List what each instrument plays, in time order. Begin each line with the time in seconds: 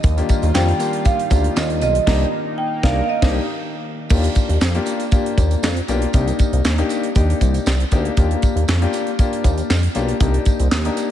Already playing: marimba D#5
0.03 analog synth bass D#2, analog synth pad D#3 G3 F4, kick, closed hi-hat, tambourine
0.17 grand piano A#3 D4 F4 G4, closed hi-hat, tambourine
0.29 kick, closed hi-hat, tambourine
0.42 analog synth bass D#2, closed hi-hat, tambourine
0.54 analog synth bass F2, grand piano A#3 D4 F4 G4, marimba G5, snare, clap, tambourine
0.68 closed hi-hat
0.79 grand piano A#3 D4 F4 G4, closed hi-hat, tambourine
0.93 closed hi-hat
1.05 marimba F5, kick, closed hi-hat, tambourine
1.19 closed hi-hat
1.30 analog synth bass D2, grand piano A#3 D4 F4 G4, kick, closed hi-hat, tambourine
1.44 closed hi-hat
1.56 analog synth bass D#2, marimba D#5, snare, clap, tambourine
1.70 closed hi-hat
1.81 analog synth bass B1, marimba D#5, closed hi-hat, tambourine
1.95 closed hi-hat
2.06 analog synth bass C2, grand piano A#3 D4 D#4 G4, analog synth pad A#3 D#4, kick, snare, crash
2.58 marimba G5
2.83 analog synth bass C2, grand piano A#3 D4 D#4 A#4, marimba F5, kick, snare
3.04 marimba F5
3.09 marimba D#5
3.22 analog synth bass C2, grand piano A#3 D4 D#4, kick, snare, crash
3.29 grand piano G4
4.09 analog synth bass D#2, grand piano A#3 D4 F4 G4, kick, crash, tambourine
4.24 closed hi-hat
4.35 kick, closed hi-hat, tambourine
4.49 analog synth bass D#2, closed hi-hat
4.61 analog synth bass F2, snare, clap, tambourine
4.75 grand piano A#3 D4 F4 G4, closed hi-hat
4.86 closed hi-hat, tambourine
5.00 closed hi-hat, tambourine
5.11 grand piano A#3 D4 F4 G4, kick, closed hi-hat, tambourine
5.26 closed hi-hat
5.37 analog synth bass D#2, kick, closed hi-hat, tambourine
5.51 closed hi-hat, tambourine
5.63 analog synth bass F2, snare, clap, tambourine
5.77 closed hi-hat
5.88 analog synth bass B1, grand piano A#3 D4 F4 G4, closed hi-hat, tambourine
6.02 closed hi-hat
6.13 analog synth bass C2, grand piano A#3 D4 D#4 G4, kick, closed hi-hat, tambourine
6.27 closed hi-hat, tambourine
6.39 kick, closed hi-hat, tambourine
6.53 analog synth bass C2, closed hi-hat
6.64 analog synth bass D#2, snare, clap, tambourine
6.78 grand piano A#3 D4 D#4 G4, closed hi-hat
6.89 closed hi-hat, tambourine
7.04 closed hi-hat
7.15 analog synth bass D#2, grand piano A#3 D4 D#4 G4, kick, closed hi-hat, tambourine
7.30 closed hi-hat
7.41 analog synth bass C2, kick, closed hi-hat, tambourine
7.54 closed hi-hat, tambourine
7.66 analog synth bass C2, snare, clap, tambourine
7.80 closed hi-hat
7.91 analog synth bass D2, grand piano A#3 D4 D#4 G4, kick, closed hi-hat, tambourine
8.05 closed hi-hat
8.17 analog synth bass D#2, grand piano A#3 D4 F4 G4, kick, closed hi-hat, tambourine
8.31 closed hi-hat
8.42 kick, closed hi-hat, tambourine
8.56 analog synth bass D#2, closed hi-hat
8.68 analog synth bass F2, snare, clap, tambourine
8.81 grand piano A#3 D4 F4 G4, closed hi-hat
8.93 closed hi-hat, tambourine
9.07 closed hi-hat
9.19 grand piano A#3 D4 F4 G4, kick, closed hi-hat, tambourine
9.33 closed hi-hat
9.44 analog synth bass D#2, kick, closed hi-hat, tambourine
9.58 closed hi-hat, tambourine
9.70 analog synth bass F2, snare, clap, tambourine
9.83 closed hi-hat
9.95 analog synth bass B1, grand piano A#3 D4 F4 G4, closed hi-hat, tambourine
10.08 closed hi-hat
10.20 analog synth bass C2, grand piano A#3 D4 D#4 G4, kick, closed hi-hat, tambourine
10.34 closed hi-hat
10.45 kick, closed hi-hat, tambourine
10.59 analog synth bass C2, closed hi-hat, tambourine
10.72 analog synth bass D#2, snare, clap, tambourine
10.85 grand piano A#3 D4 D#4 G4, closed hi-hat
10.97 closed hi-hat, tambourine